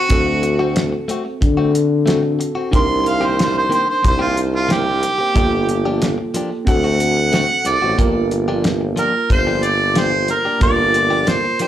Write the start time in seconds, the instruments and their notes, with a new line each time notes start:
Already playing: clean electric guitar C4 F#4, harmonica F#4
0.09 tuba D2, tine electric piano C4 F#4 A4, kick, closed hi-hat
0.26 muted clean electric guitar stroke
0.43 muted clean electric guitar stroke, closed hi-hat
0.59 clean electric guitar A3 C4 F#4
0.76 snare, closed hi-hat
0.93 muted clean electric guitar stroke
1.08 clean electric guitar A3 C4 F#4, closed hi-hat
1.25 muted clean electric guitar stroke
1.41 tuba D3, muted clean electric guitar stroke, kick, closed hi-hat
1.57 clean electric guitar A3 C4 F#4
1.73 muted clean electric guitar stroke, closed hi-hat
2.06 clean electric guitar A3 C4 F#4, tine electric piano C4 F#4 A4, snare, closed hi-hat
2.23 muted clean electric guitar stroke
2.39 muted clean electric guitar stroke, closed hi-hat
2.55 clean electric guitar C4 F#4
2.71 tuba C2, clean electric guitar D#3 A#3 C4 G4, tine electric piano D4 D#4 A#4, kick, closed hi-hat
2.76 harmonica C6
2.88 muted clean electric guitar stroke
3.04 muted clean electric guitar stroke, closed hi-hat
3.09 harmonica F5
3.21 clean electric guitar D#3 A#3 C4 G4
3.26 harmonica C5
3.39 harmonica C5, snare, closed hi-hat
3.54 muted clean electric guitar stroke
3.58 harmonica C5
3.69 clean electric guitar D#3 A#3 C4 G4, closed hi-hat
3.74 harmonica C5
3.86 harmonica C5, muted clean electric guitar stroke
4.02 tuba C2, muted clean electric guitar stroke, kick, closed hi-hat
4.07 harmonica C5
4.19 clean electric guitar D#3 A#3 C4 G4, harmonica F4
4.35 muted clean electric guitar stroke, closed hi-hat
4.56 harmonica F4
4.68 clean electric guitar D#3 A#3 C4 G4, harmonica G4, snare, closed hi-hat
4.86 muted clean electric guitar stroke
5.02 muted clean electric guitar stroke, closed hi-hat
5.18 clean electric guitar A#3 C4 G4
5.34 tuba G1, clean electric guitar F3 A#3 D4 G4, tine electric piano A#3 F4 A4, kick, closed hi-hat
5.52 muted clean electric guitar stroke
5.68 muted clean electric guitar stroke, closed hi-hat
5.86 clean electric guitar F3 A#3 D4 G4
6.02 snare, closed hi-hat
6.18 muted clean electric guitar stroke
6.34 clean electric guitar F3 A#3 D4 G4, closed hi-hat
6.51 muted clean electric guitar stroke
6.65 tuba D2, tine electric piano C4 F#4 A4, harmonica F#5, muted clean electric guitar stroke, kick, closed hi-hat
6.84 clean electric guitar A3 C4 F#4
7.00 muted clean electric guitar stroke, closed hi-hat
7.32 clean electric guitar A3 C4 F#4, snare, closed hi-hat
7.49 muted clean electric guitar stroke
7.65 tuba C2, harmonica D5, muted clean electric guitar stroke, closed hi-hat
7.82 tuba A1, clean electric guitar C4 F#4
7.96 tuba G1, clean electric guitar F3 A#3 D4 G4, tine electric piano A#3 F4 A#4, kick, closed hi-hat
8.15 muted clean electric guitar stroke
8.31 muted clean electric guitar stroke, closed hi-hat
8.48 clean electric guitar F3 A#3 D4 G4
8.64 snare, closed hi-hat
8.81 muted clean electric guitar stroke
8.96 clean electric guitar F3 A#3 D4 G4, harmonica A#4, closed hi-hat
9.14 muted clean electric guitar stroke
9.29 tuba G1, harmonica C5, muted clean electric guitar stroke, kick, closed hi-hat
9.47 clean electric guitar F3 A#3 D4 G4
9.62 harmonica D5, muted clean electric guitar stroke, closed hi-hat
9.95 clean electric guitar F3 A#3 D4 G4, harmonica C5, snare, closed hi-hat
10.12 muted clean electric guitar stroke
10.28 harmonica A#4, muted clean electric guitar stroke, closed hi-hat
10.45 clean electric guitar A#3 D4 G4
10.60 tuba G1, tine electric piano A#3 F4 A#4, harmonica D5, kick, closed hi-hat
10.78 muted clean electric guitar stroke
10.94 muted clean electric guitar stroke, closed hi-hat
11.10 clean electric guitar F3 A#3 D4 G4
11.27 harmonica C5, snare, closed hi-hat
11.44 muted clean electric guitar stroke
11.59 clean electric guitar F3 A#3 D4 G4, harmonica C5, closed hi-hat